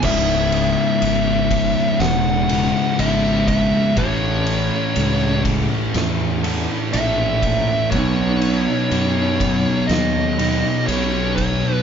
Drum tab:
CC |x-------|--------|--------|
RD |-xxxxxxx|xxxxxxxx|xxxxxxxx|
SD |----o---|----o-o-|----o---|
BD |o--o---o|o--o---o|o--o---o|